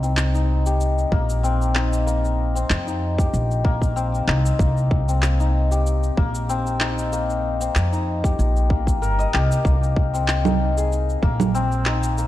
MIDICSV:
0, 0, Header, 1, 4, 480
1, 0, Start_track
1, 0, Key_signature, -3, "minor"
1, 0, Tempo, 631579
1, 1574, Time_signature, 4, 2, 24, 8
1, 9328, End_track
2, 0, Start_track
2, 0, Title_t, "Santur"
2, 0, Program_c, 0, 15
2, 0, Note_on_c, 0, 58, 73
2, 0, Note_on_c, 0, 63, 69
2, 0, Note_on_c, 0, 67, 70
2, 21, Note_on_c, 0, 60, 69
2, 259, Note_off_c, 0, 63, 0
2, 262, Note_on_c, 0, 63, 70
2, 499, Note_off_c, 0, 67, 0
2, 502, Note_on_c, 0, 67, 69
2, 849, Note_off_c, 0, 58, 0
2, 852, Note_on_c, 0, 58, 98
2, 1087, Note_off_c, 0, 60, 0
2, 1090, Note_on_c, 0, 60, 89
2, 1331, Note_off_c, 0, 63, 0
2, 1334, Note_on_c, 0, 63, 76
2, 1568, Note_off_c, 0, 58, 0
2, 1571, Note_on_c, 0, 58, 74
2, 1938, Note_off_c, 0, 60, 0
2, 1941, Note_on_c, 0, 60, 68
2, 2178, Note_off_c, 0, 63, 0
2, 2181, Note_on_c, 0, 63, 71
2, 2417, Note_off_c, 0, 67, 0
2, 2420, Note_on_c, 0, 67, 75
2, 2766, Note_off_c, 0, 58, 0
2, 2769, Note_on_c, 0, 58, 101
2, 3006, Note_off_c, 0, 60, 0
2, 3009, Note_on_c, 0, 60, 92
2, 3247, Note_off_c, 0, 63, 0
2, 3250, Note_on_c, 0, 63, 74
2, 3487, Note_off_c, 0, 58, 0
2, 3490, Note_on_c, 0, 58, 79
2, 3860, Note_off_c, 0, 60, 0
2, 3863, Note_on_c, 0, 60, 71
2, 4099, Note_off_c, 0, 63, 0
2, 4102, Note_on_c, 0, 63, 74
2, 4337, Note_off_c, 0, 67, 0
2, 4340, Note_on_c, 0, 67, 70
2, 4690, Note_off_c, 0, 58, 0
2, 4693, Note_on_c, 0, 58, 101
2, 4931, Note_off_c, 0, 60, 0
2, 4934, Note_on_c, 0, 60, 93
2, 5171, Note_off_c, 0, 63, 0
2, 5174, Note_on_c, 0, 63, 74
2, 5412, Note_off_c, 0, 58, 0
2, 5415, Note_on_c, 0, 58, 75
2, 5777, Note_off_c, 0, 60, 0
2, 5780, Note_on_c, 0, 60, 69
2, 6020, Note_off_c, 0, 63, 0
2, 6023, Note_on_c, 0, 63, 75
2, 6258, Note_off_c, 0, 67, 0
2, 6261, Note_on_c, 0, 67, 73
2, 6608, Note_off_c, 0, 58, 0
2, 6611, Note_on_c, 0, 58, 75
2, 6853, Note_on_c, 0, 70, 96
2, 6982, Note_on_c, 0, 75, 93
2, 7092, Note_off_c, 0, 67, 0
2, 7095, Note_on_c, 0, 67, 89
2, 7332, Note_off_c, 0, 58, 0
2, 7335, Note_on_c, 0, 58, 71
2, 7700, Note_off_c, 0, 60, 0
2, 7703, Note_on_c, 0, 60, 70
2, 7941, Note_off_c, 0, 63, 0
2, 7944, Note_on_c, 0, 63, 71
2, 8187, Note_on_c, 0, 68, 70
2, 8232, Note_off_c, 0, 67, 0
2, 8534, Note_off_c, 0, 58, 0
2, 8537, Note_on_c, 0, 58, 98
2, 8771, Note_off_c, 0, 60, 0
2, 8774, Note_on_c, 0, 60, 100
2, 8790, Note_off_c, 0, 75, 0
2, 9003, Note_off_c, 0, 70, 0
2, 9012, Note_off_c, 0, 63, 0
2, 9015, Note_on_c, 0, 63, 75
2, 9254, Note_off_c, 0, 58, 0
2, 9257, Note_on_c, 0, 58, 75
2, 9328, Note_off_c, 0, 58, 0
2, 9328, Note_off_c, 0, 60, 0
2, 9328, Note_off_c, 0, 63, 0
2, 9328, Note_off_c, 0, 68, 0
2, 9328, End_track
3, 0, Start_track
3, 0, Title_t, "Upright bass"
3, 0, Program_c, 1, 32
3, 0, Note_on_c, 1, 36, 89
3, 793, Note_off_c, 1, 36, 0
3, 849, Note_on_c, 1, 34, 81
3, 1992, Note_off_c, 1, 34, 0
3, 2052, Note_on_c, 1, 41, 90
3, 2474, Note_off_c, 1, 41, 0
3, 2535, Note_on_c, 1, 34, 89
3, 3195, Note_off_c, 1, 34, 0
3, 3249, Note_on_c, 1, 36, 80
3, 3417, Note_off_c, 1, 36, 0
3, 3490, Note_on_c, 1, 36, 93
3, 4632, Note_off_c, 1, 36, 0
3, 4692, Note_on_c, 1, 34, 84
3, 5834, Note_off_c, 1, 34, 0
3, 5896, Note_on_c, 1, 41, 89
3, 6315, Note_off_c, 1, 41, 0
3, 6376, Note_on_c, 1, 34, 91
3, 6858, Note_off_c, 1, 34, 0
3, 6858, Note_on_c, 1, 31, 93
3, 7022, Note_off_c, 1, 31, 0
3, 7100, Note_on_c, 1, 36, 86
3, 7263, Note_off_c, 1, 36, 0
3, 7334, Note_on_c, 1, 36, 95
3, 8475, Note_off_c, 1, 36, 0
3, 8532, Note_on_c, 1, 34, 85
3, 9328, Note_off_c, 1, 34, 0
3, 9328, End_track
4, 0, Start_track
4, 0, Title_t, "Drums"
4, 27, Note_on_c, 9, 69, 61
4, 103, Note_off_c, 9, 69, 0
4, 129, Note_on_c, 9, 39, 75
4, 136, Note_on_c, 9, 69, 52
4, 205, Note_off_c, 9, 39, 0
4, 212, Note_off_c, 9, 69, 0
4, 265, Note_on_c, 9, 69, 29
4, 341, Note_off_c, 9, 69, 0
4, 504, Note_on_c, 9, 69, 60
4, 580, Note_off_c, 9, 69, 0
4, 613, Note_on_c, 9, 69, 47
4, 689, Note_off_c, 9, 69, 0
4, 747, Note_on_c, 9, 69, 30
4, 823, Note_off_c, 9, 69, 0
4, 850, Note_on_c, 9, 36, 91
4, 926, Note_off_c, 9, 36, 0
4, 985, Note_on_c, 9, 69, 59
4, 1061, Note_off_c, 9, 69, 0
4, 1098, Note_on_c, 9, 69, 53
4, 1174, Note_off_c, 9, 69, 0
4, 1229, Note_on_c, 9, 69, 31
4, 1305, Note_off_c, 9, 69, 0
4, 1332, Note_on_c, 9, 39, 74
4, 1408, Note_off_c, 9, 39, 0
4, 1468, Note_on_c, 9, 69, 60
4, 1544, Note_off_c, 9, 69, 0
4, 1579, Note_on_c, 9, 69, 54
4, 1655, Note_off_c, 9, 69, 0
4, 1709, Note_on_c, 9, 69, 33
4, 1785, Note_off_c, 9, 69, 0
4, 1949, Note_on_c, 9, 69, 63
4, 2025, Note_off_c, 9, 69, 0
4, 2053, Note_on_c, 9, 39, 77
4, 2060, Note_on_c, 9, 69, 56
4, 2129, Note_off_c, 9, 39, 0
4, 2136, Note_off_c, 9, 69, 0
4, 2188, Note_on_c, 9, 69, 31
4, 2264, Note_off_c, 9, 69, 0
4, 2420, Note_on_c, 9, 36, 104
4, 2428, Note_on_c, 9, 69, 60
4, 2496, Note_off_c, 9, 36, 0
4, 2504, Note_off_c, 9, 69, 0
4, 2539, Note_on_c, 9, 69, 52
4, 2615, Note_off_c, 9, 69, 0
4, 2669, Note_on_c, 9, 69, 30
4, 2745, Note_off_c, 9, 69, 0
4, 2771, Note_on_c, 9, 36, 99
4, 2847, Note_off_c, 9, 36, 0
4, 2900, Note_on_c, 9, 36, 60
4, 2909, Note_on_c, 9, 69, 67
4, 2976, Note_off_c, 9, 36, 0
4, 2985, Note_off_c, 9, 69, 0
4, 3018, Note_on_c, 9, 69, 51
4, 3094, Note_off_c, 9, 69, 0
4, 3151, Note_on_c, 9, 69, 30
4, 3227, Note_off_c, 9, 69, 0
4, 3254, Note_on_c, 9, 39, 76
4, 3330, Note_off_c, 9, 39, 0
4, 3388, Note_on_c, 9, 69, 67
4, 3464, Note_off_c, 9, 69, 0
4, 3490, Note_on_c, 9, 36, 118
4, 3497, Note_on_c, 9, 69, 52
4, 3566, Note_off_c, 9, 36, 0
4, 3573, Note_off_c, 9, 69, 0
4, 3627, Note_on_c, 9, 69, 31
4, 3703, Note_off_c, 9, 69, 0
4, 3731, Note_on_c, 9, 36, 101
4, 3807, Note_off_c, 9, 36, 0
4, 3867, Note_on_c, 9, 69, 59
4, 3943, Note_off_c, 9, 69, 0
4, 3969, Note_on_c, 9, 39, 75
4, 3976, Note_on_c, 9, 69, 54
4, 4045, Note_off_c, 9, 39, 0
4, 4052, Note_off_c, 9, 69, 0
4, 4106, Note_on_c, 9, 69, 30
4, 4182, Note_off_c, 9, 69, 0
4, 4347, Note_on_c, 9, 69, 65
4, 4423, Note_off_c, 9, 69, 0
4, 4458, Note_on_c, 9, 69, 51
4, 4534, Note_off_c, 9, 69, 0
4, 4586, Note_on_c, 9, 69, 30
4, 4662, Note_off_c, 9, 69, 0
4, 4692, Note_on_c, 9, 36, 105
4, 4768, Note_off_c, 9, 36, 0
4, 4825, Note_on_c, 9, 69, 66
4, 4901, Note_off_c, 9, 69, 0
4, 4938, Note_on_c, 9, 69, 58
4, 5014, Note_off_c, 9, 69, 0
4, 5067, Note_on_c, 9, 69, 32
4, 5143, Note_off_c, 9, 69, 0
4, 5171, Note_on_c, 9, 39, 77
4, 5247, Note_off_c, 9, 39, 0
4, 5309, Note_on_c, 9, 69, 67
4, 5385, Note_off_c, 9, 69, 0
4, 5417, Note_on_c, 9, 69, 53
4, 5493, Note_off_c, 9, 69, 0
4, 5547, Note_on_c, 9, 69, 33
4, 5623, Note_off_c, 9, 69, 0
4, 5785, Note_on_c, 9, 69, 64
4, 5861, Note_off_c, 9, 69, 0
4, 5893, Note_on_c, 9, 39, 69
4, 5900, Note_on_c, 9, 69, 55
4, 5969, Note_off_c, 9, 39, 0
4, 5976, Note_off_c, 9, 69, 0
4, 6027, Note_on_c, 9, 69, 30
4, 6103, Note_off_c, 9, 69, 0
4, 6262, Note_on_c, 9, 36, 102
4, 6269, Note_on_c, 9, 69, 62
4, 6338, Note_off_c, 9, 36, 0
4, 6345, Note_off_c, 9, 69, 0
4, 6380, Note_on_c, 9, 69, 48
4, 6456, Note_off_c, 9, 69, 0
4, 6509, Note_on_c, 9, 69, 31
4, 6585, Note_off_c, 9, 69, 0
4, 6612, Note_on_c, 9, 36, 96
4, 6688, Note_off_c, 9, 36, 0
4, 6741, Note_on_c, 9, 36, 61
4, 6749, Note_on_c, 9, 69, 60
4, 6817, Note_off_c, 9, 36, 0
4, 6825, Note_off_c, 9, 69, 0
4, 6862, Note_on_c, 9, 69, 54
4, 6938, Note_off_c, 9, 69, 0
4, 6991, Note_on_c, 9, 69, 31
4, 7067, Note_off_c, 9, 69, 0
4, 7098, Note_on_c, 9, 39, 71
4, 7174, Note_off_c, 9, 39, 0
4, 7233, Note_on_c, 9, 69, 65
4, 7309, Note_off_c, 9, 69, 0
4, 7333, Note_on_c, 9, 36, 110
4, 7343, Note_on_c, 9, 69, 55
4, 7409, Note_off_c, 9, 36, 0
4, 7419, Note_off_c, 9, 69, 0
4, 7474, Note_on_c, 9, 69, 32
4, 7550, Note_off_c, 9, 69, 0
4, 7573, Note_on_c, 9, 36, 96
4, 7649, Note_off_c, 9, 36, 0
4, 7712, Note_on_c, 9, 69, 63
4, 7788, Note_off_c, 9, 69, 0
4, 7813, Note_on_c, 9, 39, 75
4, 7820, Note_on_c, 9, 69, 51
4, 7889, Note_off_c, 9, 39, 0
4, 7896, Note_off_c, 9, 69, 0
4, 7943, Note_on_c, 9, 64, 73
4, 7950, Note_on_c, 9, 69, 30
4, 8019, Note_off_c, 9, 64, 0
4, 8026, Note_off_c, 9, 69, 0
4, 8191, Note_on_c, 9, 69, 62
4, 8267, Note_off_c, 9, 69, 0
4, 8302, Note_on_c, 9, 69, 46
4, 8378, Note_off_c, 9, 69, 0
4, 8432, Note_on_c, 9, 69, 31
4, 8508, Note_off_c, 9, 69, 0
4, 8532, Note_on_c, 9, 36, 101
4, 8608, Note_off_c, 9, 36, 0
4, 8662, Note_on_c, 9, 64, 70
4, 8669, Note_on_c, 9, 69, 62
4, 8738, Note_off_c, 9, 64, 0
4, 8745, Note_off_c, 9, 69, 0
4, 8779, Note_on_c, 9, 69, 54
4, 8855, Note_off_c, 9, 69, 0
4, 8907, Note_on_c, 9, 69, 31
4, 8983, Note_off_c, 9, 69, 0
4, 9011, Note_on_c, 9, 39, 75
4, 9087, Note_off_c, 9, 39, 0
4, 9145, Note_on_c, 9, 69, 69
4, 9221, Note_off_c, 9, 69, 0
4, 9257, Note_on_c, 9, 69, 54
4, 9328, Note_off_c, 9, 69, 0
4, 9328, End_track
0, 0, End_of_file